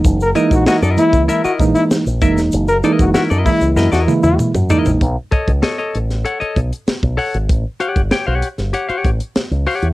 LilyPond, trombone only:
\new Staff \with { instrumentName = "Trombone" } { \time 4/4 \key fis \mixolydian \tempo 4 = 97 r16 ais'16 r16 fis'16 fis'16 r16 e'8 e'16 fis'16 r16 e'16 r4 | r16 ais'16 r16 fis'16 fis'16 r16 e'8 e'16 fis'16 r16 e'16 r4 | r1 | r1 | }